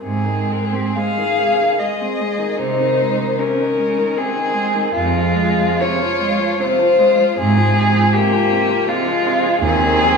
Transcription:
0.01 G#2 C3 C4 G#4
0.25 D#3
0.48 G#3 A#4
0.65 G#4
0.73 C4 G4
0.86 G#4
0.96 G#3 G#4 F5
1.18 D#3
1.39 C3
1.60 D#3
1.79 G#3 G#4 D#5
2.01 C4
2.21 G#3
2.38 D#3
2.58 C3 D#4 C5
2.80 D#3
3.01 G#3
3.19 D#3
3.38 C3 C#4 A#4
3.59 D#3
3.79 G#3
3.98 D#3
4.17 C3 C4 G#4
4.36 D#3
4.54 G#3
4.75 D#3
4.94 F2 C3 G#3 F4
5.14 F3
5.35 G#3
5.59 F3
5.80 C3 F4 C#5
6.02 F3
6.21 G#3
6.40 F3
6.60 C3 F4 C5
6.79 F3
6.99 G#3
7.19 F3
7.37 G#2 C3 C4 G#4
7.57 F3
7.76 C3
7.95 F3
8.13 C3 A#3 G4
8.33 F3
8.53 C3
8.71 F3
8.88 C3 G#3 F4
9.08 F3
9.27 C3
9.46 F3
9.60 D#2 C4 G#4
9.65 C3
9.83 D#3
10.05 F#3

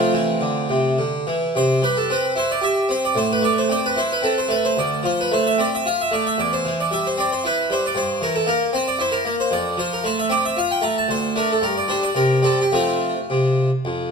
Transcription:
Already playing: F3 A3 C4 F4
0.13 E3
0.41 D3
0.70 C3
0.98 D3
1.27 E3
1.55 C3 C5
1.82 G3 B4
1.97 A4
2.10 C4 B4
2.36 E4 C5
2.51 D5
2.61 G4 E5
2.89 C4 C5
3.05 D5
3.15 A2 C5
3.33 B4
3.42 A3 D5
3.58 C5
3.69 C4 D5
3.86 B4
3.96 E4 C5
4.12 B4
4.22 C4 A4
4.38 C5
4.48 A3 B4
4.65 C5
4.77 D2 D5
5.03 F3 C5
5.21 B4
5.31 A3 C5
5.47 E5
5.58 C4 D5
5.75 E5
5.85 F4 F5
6.01 E5
6.11 A3 D5
6.27 E5
6.38 E2 D5
6.53 C5
6.65 E3
6.80 D5
6.91 G3 E5
7.07 C5
7.17 C4 D5
7.33 C5
7.44 E4 B4
7.70 G3 C5
7.86 D5
7.95 G2 C5
8.21 E3 A#4
8.36 A4
8.46 A#3 A#4
8.73 C4 C5
8.88 D5
8.99 E4 C5
9.12 A#4
9.25 A#3
9.40 C5
9.51 F2 D5
9.77 F3 C5
9.93 A#4
10.04 A3 C5
10.19 E5
10.30 C4 D5
10.45 E5
10.57 F4 F5
10.71 G5
10.81 A3 A#5
10.98 A5
11.09 D2 C5
11.36 A3 D4 A#4
11.52 A4
11.62 G2 A#4
11.77 D5
11.88 G3 D4 C5
12.03 D5
12.15 C3 A#4
12.42 G3 C4 A4
12.61 G4
12.72 F3 A3 C4 F4
13.30 C3
13.85 F2

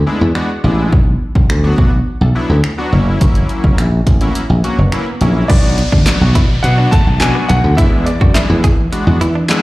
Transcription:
0.07 G#3 B3 D4 E4
0.21 E2
0.35 G#3 B3 D4 F#4, finger snap
0.64 A1 G#3 B3 D4 E4
0.93 B1, kick, swell
1.35 B1, kick
1.50 D2, finger snap
1.64 F#3 B3 D4 F#4
1.78 B1, kick
2.21 B1 D4 A4
2.35 F#3 B3 D4 E4
2.50 D2
2.64 finger snap
2.78 F#3 B3 D4 F#4
2.92 F#1 F#3 A#3 C#4 E4
3.21 F#1, kick, closed hi-hat
3.35 closed hi-hat
3.49 closed hi-hat
3.64 F#1, kick
3.78 A#1, finger snap, closed hi-hat
4.07 A1, kick, closed hi-hat
4.21 F#3 A#3 C#4 E4, closed hi-hat
4.35 closed hi-hat
4.50 A#1
4.64 F#3 A#3 C#4 F#4, closed hi-hat
4.78 F#1
4.92 F#3 A#3 C#4 E4, finger snap, closed hi-hat
5.21 A#1 F#3 A#3 C#4 E4, closed hi-hat
5.48 B1 F#3 B3 D4 F#4 D5, kick, closed hi-hat, crash, downlifter
5.78 muted clean electric guitar stroke, closed hi-hat
5.92 D2 D4, kick
6.06 F#3 B3 D4 F#4, snare, clap, closed hi-hat
6.21 B1
6.35 B2 E4, kick, closed hi-hat
6.63 B2 F#3 B3 D4 F#4 F#5, muted clean electric guitar stroke, closed hi-hat
6.78 D4
6.91 A3 A5, kick, closed hi-hat
7.07 B1
7.20 B2 F#3 B3 D4 F#4 G#5, muted clean electric guitar stroke, snare, clap, closed hi-hat
7.35 B3
7.48 B1 B3 F#5, closed hi-hat
7.64 D2
7.77 E2 G#3 B3 D4 E4 E5, kick, closed hi-hat
8.06 D5, muted clean electric guitar stroke, closed hi-hat
8.21 F#2 F#4, kick
8.34 G#3 B3 D4 E4 E5, snare, clap, closed hi-hat
8.50 E2
8.64 E3 G#4, kick, closed hi-hat
8.92 G#3 B3 D4 F#4, muted clean electric guitar stroke, closed hi-hat
9.07 E2
9.21 E3 E4, closed hi-hat
9.35 D4
9.49 G#3 B3 D4 E4, muted clean electric guitar stroke, snare, clap, closed hi-hat

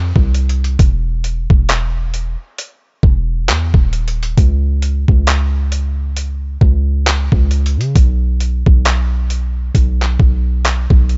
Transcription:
Already playing: F2
0.16 C2, kick
0.34 closed hi-hat
0.49 closed hi-hat
0.64 closed hi-hat
0.79 E1, kick, closed hi-hat
1.24 closed hi-hat
1.50 E1, kick
1.69 clap, closed hi-hat
2.14 closed hi-hat
2.58 closed hi-hat
3.03 E1, kick
3.48 E2, clap, closed hi-hat
3.74 D#1, kick
3.93 closed hi-hat
4.08 closed hi-hat
4.23 closed hi-hat
4.37 C#2, kick, closed hi-hat
4.82 closed hi-hat
5.08 C#2, kick
5.27 clap, closed hi-hat
5.72 closed hi-hat
6.17 closed hi-hat
6.61 C#2, kick
7.06 clap, closed hi-hat
7.32 C#2, kick
7.51 closed hi-hat
7.66 closed hi-hat
7.77 C#3
7.81 closed hi-hat
7.96 B1, kick, closed hi-hat
8.40 closed hi-hat
8.66 B1, kick
8.85 clap, closed hi-hat
9.30 closed hi-hat
9.75 B1, kick, closed hi-hat
10.02 clap
10.20 B1, kick
10.65 clap, closed hi-hat
10.90 B1, kick
11.09 closed hi-hat

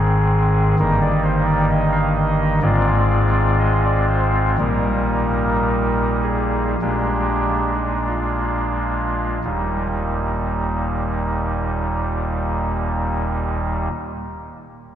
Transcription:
Already playing: G#1 G#2 D#3 C4 G#4
0.79 G1 G2 D#3 A#3 D#4 A#4
1.02 D5
1.24 C5
1.46 D5
1.70 D#5
1.92 F5
2.16 D#5
2.62 G#1 G#2 G#3 C4 F4 D5
3.59 D#5
3.85 D5
4.08 C5
4.58 A#1 A#2 G3 A#3 D#4 A#4
6.23 G#4
6.81 A#1 A#2 G#3 A#3 D4 G4
7.74 D#4
8.07 F4
9.44 D#1 D#2 A#2 G3 A#3 D#4

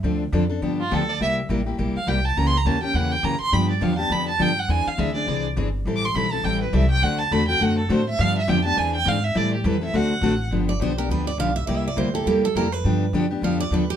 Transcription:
0.03 D2 D3 F3 C4 D4 A4
0.32 F2 D3 F3 C4 D4 A4
0.50 C4 D4 A4
0.62 G2 D3 F3 B3 D4 G4
0.81 F4
0.91 D2 D3 F3 B3 D4 G4 A4
1.10 D5
1.20 C2 C3 G3 A#3 E4 G4 E5
1.49 A1 C3 G3 A#3 E4 G4
1.66 A#3 E4 G4
1.78 A#1 C3 G3 A#3 E4 G4
1.95 F5, muted upright bass stroke
2.07 C2 C3 G3 A#3 E4 G4 G5
2.25 A5
2.37 C#2 C#3 E3 A#3 C#4 G4 A#5
2.47 C6
2.58 A#5
2.65 D#2 C#3 E3 A#3 C#4 G4 A5
2.83 A#3 C#4 G4 G5
2.94 E2 C#3 E3 A#3 C#4 G4 F#5
3.12 G5
3.23 F#2 C#3 E3 A#3 C#4 G4 A#5
3.40 C6, muted upright bass stroke
3.52 G2 D3 F3 B3 D4 G4 B5
3.71 D5
3.81 E2 D3 F3 B3 D4 G4 F5
3.99 B3 D4 G4 A5
4.10 F2 D3 F3 B3 D4 G4 B5
4.29 A5
4.39 G2 D3 F3 B3 D4 G4 G5
4.59 F#5
4.68 E2 E3 C4 D4 G#4 G#5
4.86 F5, muted upright bass stroke
4.98 D2 E3 C4 D4 G#4 E5
5.15 C4 D4 G#4 D5
5.27 C2 E3 C4 D4 G#4
5.56 G1 E3 C4 D4 G#4
5.85 A1 E3 G3 C4 E4 A4
5.96 D6
6.05 C6
6.15 B1 E3 G3 C4 E4 A4 B5
6.32 C4 E4 A4 A5
6.44 A1 E3 G3 C4 E4 A4 G5
6.61 B4
6.73 C2 E3 G3 C4 E4 A4 E5
6.91 G5
7.02 D2 D3 A3 C4 F#4 A4 F#5
7.18 A5
7.31 E2 D3 A3 C4 F#4 A4 B5
7.48 C4 F#4 A4 G5
7.60 F#2 D3 A3 C4 F#4 A4 F#5
7.79 A4
7.89 A2 D3 A3 C4 F#4 A4 C5
8.09 E5
8.19 G2 D3 F3 B3 D4 G4 F5
8.38 E5
8.48 F2 D3 F3 B3 D4 G4 G5
8.65 B3 D4 G4 A5
8.77 E2 E3 C4 D4 G#4 G#5
8.96 G5
9.05 G#2 E3 C4 D4 G#4 F5
9.24 E5
9.35 A2 E3 G3 C4 E4 A4 D5
9.54 G4
9.64 E2 E3 G3 C4 E4 A4 B4
9.81 C4 E4 A4 E5
9.93 D2 D3 A3 C4 F#4 A4 F#5
10.21 A1 D3 A3 C4 F#4 A4
10.51 G1 D3 F3 B3 D4 G4
10.69 D5
10.80 B1 D3 F3 B3 D4 G4 C5
10.98 B3 D4 G4 A#4
11.09 D2 D3 F3 B3 D4 G4 B4
11.27 D5
11.38 B1 D3 F3 B3 D4 G4 F5
11.56 E5
11.67 C2 C3 G3 A#3 E4 G4 D5
11.77 E5
11.88 D5
11.96 D2 C3 G3 A#3 E4 G4 C5
12.14 A#3 E4 G4 A4
12.26 E2 C3 G3 A#3 E4 G4
12.45 A4
12.55 F2 C3 G3 A#3 E4 G4 A#4
12.72 B4
12.84 G2 D3 F3 B3 D4 G4
13.13 F#2 D3 F3 B3 D4 G4
13.30 B3 D4 G4
13.42 F2 D3 F3 B3 D4 G4 F5
13.60 D5
13.71 D#2 D3 F3 B3 D4 G4 B4
13.90 G4

